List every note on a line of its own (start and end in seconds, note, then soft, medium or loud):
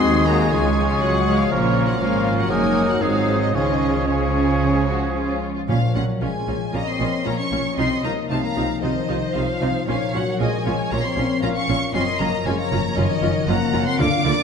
0.00 0.45 D#2 soft
0.00 0.46 D#2 medium
0.00 0.53 D#3 soft
0.00 0.25 G#3 soft
0.00 1.47 G#3 soft
0.00 0.26 C4 soft
0.00 0.26 C4 medium
0.00 0.53 D#4 soft
0.00 0.25 F#4 soft
0.00 0.54 F#4 soft
0.00 0.53 F#4 soft
0.00 0.26 G#4 soft
0.00 1.00 G#4 soft
0.00 1.47 G#4 soft
0.00 0.25 G#5 soft
0.00 0.25 C6 medium
0.00 0.51 D#6 soft
0.26 0.50 G#3 soft
0.26 0.51 A#3 medium
0.26 0.51 C4 soft
0.26 0.51 F#4 soft
0.26 0.51 G#4 soft
0.26 1.53 G#5 soft
0.26 0.51 A#5 medium
0.51 0.95 C#2 medium
0.51 0.96 C#2 medium
0.51 1.53 C#3 soft
0.51 0.88 G#3 medium
0.51 0.75 G#3 soft
0.51 0.75 C#4 soft
0.51 0.76 F4 soft
0.51 1.51 F4 soft
0.51 0.76 C#5 soft
0.51 0.87 G#5 medium
0.51 1.49 C#6 soft
0.76 1.75 F3 soft
0.76 1.25 G#3 soft
0.76 1.25 C#4 soft
0.76 1.26 F4 soft
0.76 1.26 C#5 soft
0.89 1.01 G#3 soft
0.89 1.01 G#5 medium
1.01 1.45 C#2 soft
1.01 1.39 F#3 soft
1.01 1.53 G#4 soft
1.01 1.38 F#5 medium
1.26 1.50 G#3 soft
1.26 1.50 C#4 soft
1.26 1.50 F4 soft
1.26 1.50 C#5 soft
1.26 2.24 F5 soft
1.38 1.51 F3 soft
1.38 1.51 F5 medium
1.50 1.97 A#1 soft
1.50 1.97 A#2 medium
1.50 2.53 A#2 soft
1.50 1.87 C#3 medium
1.50 1.97 F3 soft
1.50 1.97 A#3 soft
1.50 1.97 C#4 soft
1.50 1.97 F4 soft
1.50 1.97 A#4 soft
1.50 1.87 C#5 medium
1.50 1.97 C#5 soft
1.50 1.97 C#6 soft
1.76 2.53 F3 soft
1.87 2.00 F#3 soft
1.87 2.00 F#5 medium
1.99 2.49 G#1 soft
1.99 2.49 G#2 soft
1.99 2.51 F3 soft
1.99 2.37 F3 soft
1.99 2.49 A#3 soft
1.99 2.49 C#4 soft
1.99 2.49 F4 soft
1.99 2.52 F4 soft
1.99 2.75 A#4 soft
1.99 2.50 A#4 soft
1.99 2.25 C#5 soft
1.99 2.37 F5 soft
1.99 2.52 C#6 soft
2.25 2.50 C5 soft
2.25 2.53 F5 soft
2.38 2.50 F#3 soft
2.38 2.50 F#5 medium
2.50 3.01 F#1 soft
2.50 3.01 F#2 soft
2.50 3.04 F#2 soft
2.50 3.01 F#3 soft
2.50 2.89 G#3 medium
2.50 3.00 A#3 soft
2.50 3.00 D#4 soft
2.50 3.02 D#4 soft
2.50 3.00 F#4 soft
2.50 3.01 A#4 soft
2.50 3.03 A#4 soft
2.50 2.88 G#5 medium
2.50 3.01 D#6 soft
2.76 3.27 D#4 soft
2.76 3.04 A#4 soft
2.89 3.02 F#3 soft
2.89 3.02 F#5 medium
3.01 3.53 G#1 soft
3.01 3.57 G#2 soft
3.01 3.53 G#2 soft
3.01 3.41 F3 soft
3.01 3.56 F#3 soft
3.01 3.53 G#3 soft
3.01 3.54 C4 soft
3.01 3.53 D#4 soft
3.01 3.53 F#4 soft
3.01 3.54 G#4 soft
3.01 3.54 C5 soft
3.01 3.41 F5 medium
3.01 3.57 D#6 soft
3.28 3.57 C5 soft
3.40 3.52 D#3 soft
3.40 3.53 D#5 soft
3.53 5.48 C#2 soft
3.53 5.71 C#3 soft
3.53 5.48 C#3 soft
3.53 4.06 D#3 medium
3.53 4.07 F3 soft
3.53 4.06 G#3 soft
3.53 4.06 C#4 soft
3.53 4.07 C#4 soft
3.53 4.07 F4 soft
3.53 4.07 G#4 soft
3.53 4.08 C#5 soft
3.53 4.07 D#5 medium
3.53 4.07 C#6 soft
3.81 4.87 C#4 soft
4.07 5.39 C#3 soft
4.07 5.39 F3 soft
4.07 5.45 G#3 soft
4.07 5.45 C#4 soft
4.07 5.39 C#4 soft
4.07 5.13 F4 soft
4.07 5.39 G#4 soft
4.07 4.84 G#4 soft
4.07 5.42 C#5 soft
4.07 5.39 C#6 soft
4.34 5.40 C#6 soft
4.61 6.56 F3 soft
4.87 6.03 C#4 soft
4.87 5.15 F#4 soft
5.14 5.54 F4 soft
5.14 9.05 F4 soft
5.42 7.80 C#6 soft
5.56 5.61 F4 soft
5.68 5.76 A#1 soft
5.68 7.80 A#2 soft
5.68 5.77 A#2 soft
5.68 6.44 A#2 medium
5.68 5.93 F3 soft
5.68 5.76 C#4 soft
5.68 5.76 F4 soft
5.68 5.94 F5 medium
5.86 6.90 C#5 soft
5.95 6.03 A#1 soft
5.95 6.03 A#2 soft
5.95 6.22 F#3 soft
5.95 6.03 C#4 soft
5.95 6.03 F4 soft
5.95 6.03 F#5 medium
6.04 6.38 C#4 soft
6.21 6.29 A#1 soft
6.21 6.29 A#2 soft
6.21 6.74 G#3 soft
6.21 6.51 C4 soft
6.21 6.29 C#4 soft
6.21 6.29 F4 soft
6.21 6.73 G#5 medium
6.39 7.08 C#4 soft
6.47 6.56 A#1 soft
6.47 6.56 A#2 soft
6.47 6.55 C#4 soft
6.47 6.55 F4 soft
6.57 7.59 F3 soft
6.73 6.82 A#1 soft
6.73 6.82 A#2 soft
6.73 6.87 A#3 medium
6.73 7.80 A#3 soft
6.73 6.81 C#4 soft
6.73 6.81 F4 soft
6.73 7.22 D#5 medium
6.73 6.87 A#5 medium
6.86 7.25 C4 soft
6.86 7.26 C6 medium
6.91 7.80 C#5 soft
6.99 7.09 A#1 soft
6.99 7.07 A#2 soft
6.99 7.08 C#4 soft
6.99 7.08 F4 soft
7.09 7.42 C#4 soft
7.25 7.34 A#1 soft
7.25 7.33 A#2 soft
7.25 7.38 A#3 soft
7.25 7.55 C4 soft
7.25 7.33 C#4 soft
7.25 7.34 F4 soft
7.25 7.78 C#5 soft
7.25 7.38 A#5 medium
7.38 7.77 C#4 medium
7.38 7.77 C#6 medium
7.43 7.80 C#4 soft
7.51 7.60 A#1 soft
7.51 7.59 A#2 soft
7.51 7.60 C#4 soft
7.51 7.59 F4 soft
7.60 8.64 F3 soft
7.77 7.86 C2 soft
7.77 7.86 C3 soft
7.77 9.90 C3 soft
7.77 8.04 C4 medium
7.77 7.86 D#4 soft
7.77 7.86 F4 soft
7.77 8.29 D#5 soft
7.77 8.03 C6 medium
7.95 8.99 A4 soft
8.03 8.12 C2 soft
8.03 8.12 C3 soft
8.03 8.30 A#3 medium
8.03 8.12 D#4 soft
8.03 8.12 F4 soft
8.03 8.11 A#5 medium
8.13 8.46 D#4 soft
8.29 8.38 C2 soft
8.29 8.38 C3 soft
8.29 8.43 A3 soft
8.29 8.60 C#4 soft
8.29 8.39 D#4 soft
8.29 8.38 F4 soft
8.29 8.82 F5 soft
8.29 8.43 A5 medium
8.43 8.82 A#3 medium
8.43 8.82 A#5 medium
8.47 9.17 D#4 soft
8.56 8.64 C2 soft
8.56 8.65 C3 soft
8.56 8.65 D#4 soft
8.56 8.65 F4 soft
8.65 9.69 F3 soft
8.82 8.91 C2 soft
8.82 8.91 C3 soft
8.82 9.35 D#3 soft
8.82 9.90 C4 soft
8.82 8.91 D#4 soft
8.82 8.91 F4 soft
8.82 9.86 C5 medium
8.82 9.34 D#5 medium
9.00 9.90 A4 soft
9.09 9.17 C2 soft
9.09 9.17 C3 soft
9.09 9.17 D#4 soft
9.09 9.17 F4 soft
9.18 9.52 D#4 soft
9.34 9.43 C2 soft
9.34 9.43 C3 soft
9.34 9.87 F3 medium
9.34 9.65 C#4 soft
9.34 9.43 D#4 soft
9.34 9.43 F4 soft
9.34 9.86 F5 medium
9.53 9.90 D#4 soft
9.61 9.70 C2 soft
9.61 9.69 C3 soft
9.61 9.69 D#4 soft
9.61 9.69 F4 soft
9.70 10.73 F3 soft
9.87 9.95 A#1 medium
9.87 9.95 A#2 medium
9.87 11.97 A#2 soft
9.87 10.14 F3 medium
9.87 9.96 C#4 medium
9.87 9.95 F4 soft
9.87 10.39 C#5 soft
9.87 10.13 F5 medium
10.05 11.07 A#4 soft
10.14 10.22 A#1 soft
10.14 10.22 A#2 soft
10.14 10.40 F#3 medium
10.14 10.22 C#4 soft
10.14 10.22 F4 soft
10.14 10.40 F#5 medium
10.22 10.56 C#4 soft
10.39 10.48 A#1 medium
10.39 10.48 A#2 soft
10.39 10.92 G#3 medium
10.39 10.69 C4 soft
10.39 10.48 C#4 soft
10.39 10.48 F4 soft
10.39 10.66 D#5 soft
10.39 10.90 G#5 medium
10.57 11.24 C#4 soft
10.65 10.74 A#1 soft
10.65 10.74 A#2 soft
10.65 10.73 C#4 soft
10.65 10.73 F4 soft
10.65 11.42 C#5 medium
10.74 11.76 F3 soft
10.90 11.00 A#1 soft
10.90 10.99 A#2 medium
10.90 14.43 A#3 soft
10.90 11.04 A#3 medium
10.90 10.99 C#4 soft
10.90 10.99 F4 soft
10.90 11.04 A#5 medium
11.03 11.42 C4 medium
11.03 11.42 C6 medium
11.08 12.10 A#4 soft
11.16 11.25 A#1 soft
11.16 11.24 A#2 soft
11.16 11.25 C#4 soft
11.16 11.25 F4 soft
11.25 11.59 C#4 soft
11.42 11.51 A#1 medium
11.42 11.50 A#2 medium
11.42 11.56 A#3 medium
11.42 11.72 C4 soft
11.42 11.50 C#4 soft
11.42 11.51 F4 soft
11.42 11.94 F5 soft
11.42 11.47 A#5 medium
11.55 11.95 C#4 medium
11.55 11.94 C#6 medium
11.60 12.27 C#4 soft
11.68 11.77 A#1 soft
11.68 11.76 A#2 soft
11.68 11.76 C#4 soft
11.68 11.77 F4 soft
11.77 12.78 F3 soft
11.94 12.02 F#1 medium
11.94 14.01 F#2 soft
11.94 12.02 F#2 medium
11.94 12.06 C4 medium
11.94 12.02 C#4 medium
11.94 12.02 F4 medium
11.94 12.45 D#5 medium
11.94 12.20 C6 medium
12.11 13.12 A#4 soft
12.19 12.28 F#1 medium
12.19 12.28 F#2 medium
12.19 12.33 A#3 medium
12.19 12.28 C#4 soft
12.19 12.27 F4 soft
12.19 12.46 A#5 medium
12.28 12.61 C#4 soft
12.45 12.54 F#1 medium
12.45 12.53 F#2 medium
12.45 12.59 G#3 medium
12.45 12.75 C4 soft
12.45 12.54 C#4 soft
12.45 12.54 F4 soft
12.45 13.46 C#5 medium
12.45 12.59 G#5 medium
12.59 12.97 A#3 medium
12.59 13.29 C#4 soft
12.59 12.97 A#5 medium
12.71 12.80 F#1 medium
12.71 12.79 F#2 medium
12.71 12.79 C#4 medium
12.71 12.79 F4 soft
12.80 13.81 F3 soft
12.96 13.05 F#1 medium
12.96 13.05 F#2 medium
12.96 14.01 C#3 soft
12.96 13.47 D#3 medium
12.96 13.05 C#4 medium
12.96 13.05 F4 medium
12.96 13.48 D#5 medium
13.13 14.32 A#4 soft
13.22 13.30 F#1 medium
13.22 13.30 F#2 medium
13.22 13.30 C#4 medium
13.22 13.30 F4 medium
13.30 13.63 C#4 soft
13.47 13.55 F#1 medium
13.47 13.55 F#2 medium
13.47 13.86 A#3 medium
13.47 13.77 C4 soft
13.47 13.55 C#4 medium
13.47 13.55 F4 medium
13.47 13.98 F#5 medium
13.47 13.87 A#5 medium
13.64 14.01 C#4 soft
13.73 13.81 F#1 medium
13.73 13.81 F#2 medium
13.73 13.81 C#4 medium
13.73 13.81 F4 medium
13.82 14.43 F3 soft
13.82 13.99 C6 medium
13.87 14.00 C4 medium
13.99 14.07 D2 medium
13.99 14.43 D3 medium
13.99 14.07 D3 medium
13.99 14.07 A#3 medium
13.99 14.43 D4 medium
13.99 14.07 F4 medium
13.99 14.25 F5 medium
13.99 14.43 D6 medium
14.17 14.43 F4 soft
14.25 14.33 D2 medium
14.25 14.33 D3 medium
14.25 14.33 A#3 medium
14.25 14.33 F4 medium
14.25 14.43 D5 medium
14.34 14.43 A#4 soft